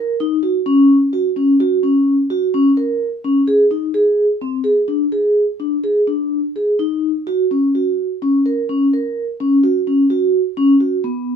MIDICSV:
0, 0, Header, 1, 2, 480
1, 0, Start_track
1, 0, Tempo, 468384
1, 206, Time_signature, 7, 2, 24, 8
1, 4047, Tempo, 478088
1, 6927, Tempo, 470219
1, 11562, End_track
2, 0, Start_track
2, 0, Title_t, "Vibraphone"
2, 0, Program_c, 0, 11
2, 0, Note_on_c, 0, 70, 66
2, 118, Note_off_c, 0, 70, 0
2, 206, Note_on_c, 0, 63, 78
2, 356, Note_off_c, 0, 63, 0
2, 439, Note_on_c, 0, 66, 66
2, 591, Note_off_c, 0, 66, 0
2, 678, Note_on_c, 0, 61, 76
2, 981, Note_off_c, 0, 61, 0
2, 1158, Note_on_c, 0, 66, 66
2, 1311, Note_off_c, 0, 66, 0
2, 1399, Note_on_c, 0, 61, 67
2, 1551, Note_off_c, 0, 61, 0
2, 1643, Note_on_c, 0, 66, 82
2, 1794, Note_off_c, 0, 66, 0
2, 1877, Note_on_c, 0, 61, 64
2, 2182, Note_off_c, 0, 61, 0
2, 2359, Note_on_c, 0, 66, 71
2, 2512, Note_off_c, 0, 66, 0
2, 2603, Note_on_c, 0, 61, 71
2, 2754, Note_off_c, 0, 61, 0
2, 2841, Note_on_c, 0, 70, 67
2, 3143, Note_off_c, 0, 70, 0
2, 3325, Note_on_c, 0, 61, 63
2, 3475, Note_off_c, 0, 61, 0
2, 3561, Note_on_c, 0, 68, 74
2, 3713, Note_off_c, 0, 68, 0
2, 3800, Note_on_c, 0, 63, 62
2, 3953, Note_off_c, 0, 63, 0
2, 4041, Note_on_c, 0, 68, 72
2, 4340, Note_off_c, 0, 68, 0
2, 4514, Note_on_c, 0, 60, 58
2, 4665, Note_off_c, 0, 60, 0
2, 4741, Note_on_c, 0, 68, 67
2, 4896, Note_off_c, 0, 68, 0
2, 4981, Note_on_c, 0, 62, 64
2, 5136, Note_off_c, 0, 62, 0
2, 5223, Note_on_c, 0, 68, 66
2, 5528, Note_off_c, 0, 68, 0
2, 5703, Note_on_c, 0, 62, 57
2, 5859, Note_off_c, 0, 62, 0
2, 5942, Note_on_c, 0, 68, 68
2, 6100, Note_off_c, 0, 68, 0
2, 6180, Note_on_c, 0, 62, 63
2, 6491, Note_off_c, 0, 62, 0
2, 6667, Note_on_c, 0, 68, 56
2, 6824, Note_off_c, 0, 68, 0
2, 6902, Note_on_c, 0, 63, 72
2, 7213, Note_off_c, 0, 63, 0
2, 7389, Note_on_c, 0, 66, 75
2, 7546, Note_off_c, 0, 66, 0
2, 7634, Note_on_c, 0, 61, 65
2, 7790, Note_off_c, 0, 61, 0
2, 7879, Note_on_c, 0, 66, 60
2, 8185, Note_off_c, 0, 66, 0
2, 8360, Note_on_c, 0, 61, 71
2, 8514, Note_off_c, 0, 61, 0
2, 8601, Note_on_c, 0, 70, 61
2, 8756, Note_off_c, 0, 70, 0
2, 8840, Note_on_c, 0, 61, 65
2, 8996, Note_off_c, 0, 61, 0
2, 9088, Note_on_c, 0, 70, 63
2, 9392, Note_off_c, 0, 70, 0
2, 9565, Note_on_c, 0, 61, 71
2, 9718, Note_off_c, 0, 61, 0
2, 9804, Note_on_c, 0, 66, 73
2, 9957, Note_off_c, 0, 66, 0
2, 10045, Note_on_c, 0, 61, 64
2, 10198, Note_off_c, 0, 61, 0
2, 10279, Note_on_c, 0, 66, 75
2, 10584, Note_off_c, 0, 66, 0
2, 10758, Note_on_c, 0, 61, 75
2, 10912, Note_off_c, 0, 61, 0
2, 10997, Note_on_c, 0, 66, 61
2, 11151, Note_off_c, 0, 66, 0
2, 11238, Note_on_c, 0, 59, 69
2, 11541, Note_off_c, 0, 59, 0
2, 11562, End_track
0, 0, End_of_file